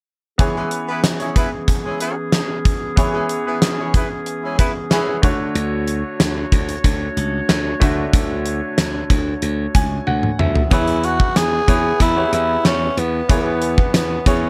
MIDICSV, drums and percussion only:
0, 0, Header, 1, 2, 480
1, 0, Start_track
1, 0, Tempo, 645161
1, 292, Time_signature, 4, 2, 24, 8
1, 10785, End_track
2, 0, Start_track
2, 0, Title_t, "Drums"
2, 291, Note_on_c, 9, 36, 97
2, 292, Note_on_c, 9, 42, 73
2, 366, Note_off_c, 9, 36, 0
2, 366, Note_off_c, 9, 42, 0
2, 530, Note_on_c, 9, 42, 62
2, 604, Note_off_c, 9, 42, 0
2, 771, Note_on_c, 9, 38, 90
2, 772, Note_on_c, 9, 42, 85
2, 845, Note_off_c, 9, 38, 0
2, 846, Note_off_c, 9, 42, 0
2, 892, Note_on_c, 9, 42, 40
2, 967, Note_off_c, 9, 42, 0
2, 1011, Note_on_c, 9, 36, 74
2, 1012, Note_on_c, 9, 42, 57
2, 1085, Note_off_c, 9, 36, 0
2, 1086, Note_off_c, 9, 42, 0
2, 1249, Note_on_c, 9, 36, 69
2, 1250, Note_on_c, 9, 42, 66
2, 1324, Note_off_c, 9, 36, 0
2, 1324, Note_off_c, 9, 42, 0
2, 1491, Note_on_c, 9, 42, 66
2, 1566, Note_off_c, 9, 42, 0
2, 1729, Note_on_c, 9, 38, 83
2, 1730, Note_on_c, 9, 42, 71
2, 1803, Note_off_c, 9, 38, 0
2, 1804, Note_off_c, 9, 42, 0
2, 1974, Note_on_c, 9, 36, 84
2, 1974, Note_on_c, 9, 42, 59
2, 2048, Note_off_c, 9, 36, 0
2, 2048, Note_off_c, 9, 42, 0
2, 2212, Note_on_c, 9, 36, 99
2, 2212, Note_on_c, 9, 42, 74
2, 2286, Note_off_c, 9, 36, 0
2, 2286, Note_off_c, 9, 42, 0
2, 2450, Note_on_c, 9, 42, 62
2, 2525, Note_off_c, 9, 42, 0
2, 2692, Note_on_c, 9, 38, 89
2, 2692, Note_on_c, 9, 42, 84
2, 2766, Note_off_c, 9, 38, 0
2, 2767, Note_off_c, 9, 42, 0
2, 2932, Note_on_c, 9, 36, 78
2, 2933, Note_on_c, 9, 42, 54
2, 3006, Note_off_c, 9, 36, 0
2, 3007, Note_off_c, 9, 42, 0
2, 3171, Note_on_c, 9, 42, 64
2, 3245, Note_off_c, 9, 42, 0
2, 3414, Note_on_c, 9, 36, 80
2, 3414, Note_on_c, 9, 42, 69
2, 3488, Note_off_c, 9, 42, 0
2, 3489, Note_off_c, 9, 36, 0
2, 3652, Note_on_c, 9, 38, 89
2, 3653, Note_on_c, 9, 42, 70
2, 3727, Note_off_c, 9, 38, 0
2, 3728, Note_off_c, 9, 42, 0
2, 3893, Note_on_c, 9, 36, 95
2, 3895, Note_on_c, 9, 42, 56
2, 3967, Note_off_c, 9, 36, 0
2, 3969, Note_off_c, 9, 42, 0
2, 4133, Note_on_c, 9, 42, 74
2, 4207, Note_off_c, 9, 42, 0
2, 4371, Note_on_c, 9, 42, 62
2, 4445, Note_off_c, 9, 42, 0
2, 4612, Note_on_c, 9, 38, 91
2, 4612, Note_on_c, 9, 42, 83
2, 4686, Note_off_c, 9, 38, 0
2, 4687, Note_off_c, 9, 42, 0
2, 4852, Note_on_c, 9, 36, 80
2, 4853, Note_on_c, 9, 42, 58
2, 4926, Note_off_c, 9, 36, 0
2, 4928, Note_off_c, 9, 42, 0
2, 4975, Note_on_c, 9, 42, 54
2, 5049, Note_off_c, 9, 42, 0
2, 5091, Note_on_c, 9, 36, 73
2, 5092, Note_on_c, 9, 42, 66
2, 5165, Note_off_c, 9, 36, 0
2, 5167, Note_off_c, 9, 42, 0
2, 5335, Note_on_c, 9, 42, 72
2, 5410, Note_off_c, 9, 42, 0
2, 5573, Note_on_c, 9, 38, 84
2, 5574, Note_on_c, 9, 42, 73
2, 5647, Note_off_c, 9, 38, 0
2, 5649, Note_off_c, 9, 42, 0
2, 5815, Note_on_c, 9, 36, 82
2, 5816, Note_on_c, 9, 42, 62
2, 5890, Note_off_c, 9, 36, 0
2, 5891, Note_off_c, 9, 42, 0
2, 6052, Note_on_c, 9, 36, 97
2, 6053, Note_on_c, 9, 42, 76
2, 6126, Note_off_c, 9, 36, 0
2, 6127, Note_off_c, 9, 42, 0
2, 6291, Note_on_c, 9, 42, 65
2, 6365, Note_off_c, 9, 42, 0
2, 6531, Note_on_c, 9, 38, 97
2, 6531, Note_on_c, 9, 42, 91
2, 6605, Note_off_c, 9, 38, 0
2, 6606, Note_off_c, 9, 42, 0
2, 6771, Note_on_c, 9, 36, 79
2, 6771, Note_on_c, 9, 42, 59
2, 6845, Note_off_c, 9, 36, 0
2, 6846, Note_off_c, 9, 42, 0
2, 7009, Note_on_c, 9, 42, 68
2, 7084, Note_off_c, 9, 42, 0
2, 7252, Note_on_c, 9, 42, 69
2, 7253, Note_on_c, 9, 36, 85
2, 7326, Note_off_c, 9, 42, 0
2, 7327, Note_off_c, 9, 36, 0
2, 7491, Note_on_c, 9, 48, 45
2, 7566, Note_off_c, 9, 48, 0
2, 7612, Note_on_c, 9, 47, 48
2, 7686, Note_off_c, 9, 47, 0
2, 7733, Note_on_c, 9, 45, 71
2, 7807, Note_off_c, 9, 45, 0
2, 7853, Note_on_c, 9, 43, 75
2, 7927, Note_off_c, 9, 43, 0
2, 7971, Note_on_c, 9, 36, 91
2, 7971, Note_on_c, 9, 42, 72
2, 8045, Note_off_c, 9, 36, 0
2, 8045, Note_off_c, 9, 42, 0
2, 8091, Note_on_c, 9, 42, 47
2, 8165, Note_off_c, 9, 42, 0
2, 8211, Note_on_c, 9, 42, 63
2, 8285, Note_off_c, 9, 42, 0
2, 8331, Note_on_c, 9, 36, 78
2, 8406, Note_off_c, 9, 36, 0
2, 8452, Note_on_c, 9, 38, 93
2, 8453, Note_on_c, 9, 42, 88
2, 8526, Note_off_c, 9, 38, 0
2, 8527, Note_off_c, 9, 42, 0
2, 8691, Note_on_c, 9, 36, 81
2, 8692, Note_on_c, 9, 42, 58
2, 8765, Note_off_c, 9, 36, 0
2, 8766, Note_off_c, 9, 42, 0
2, 8929, Note_on_c, 9, 36, 68
2, 8930, Note_on_c, 9, 42, 68
2, 9003, Note_off_c, 9, 36, 0
2, 9004, Note_off_c, 9, 42, 0
2, 9172, Note_on_c, 9, 42, 70
2, 9246, Note_off_c, 9, 42, 0
2, 9411, Note_on_c, 9, 38, 88
2, 9412, Note_on_c, 9, 42, 67
2, 9485, Note_off_c, 9, 38, 0
2, 9487, Note_off_c, 9, 42, 0
2, 9654, Note_on_c, 9, 42, 61
2, 9728, Note_off_c, 9, 42, 0
2, 9891, Note_on_c, 9, 36, 98
2, 9891, Note_on_c, 9, 42, 71
2, 9966, Note_off_c, 9, 36, 0
2, 9966, Note_off_c, 9, 42, 0
2, 10130, Note_on_c, 9, 42, 67
2, 10205, Note_off_c, 9, 42, 0
2, 10251, Note_on_c, 9, 36, 76
2, 10326, Note_off_c, 9, 36, 0
2, 10371, Note_on_c, 9, 38, 94
2, 10372, Note_on_c, 9, 42, 87
2, 10446, Note_off_c, 9, 38, 0
2, 10446, Note_off_c, 9, 42, 0
2, 10611, Note_on_c, 9, 36, 81
2, 10611, Note_on_c, 9, 42, 58
2, 10685, Note_off_c, 9, 36, 0
2, 10686, Note_off_c, 9, 42, 0
2, 10785, End_track
0, 0, End_of_file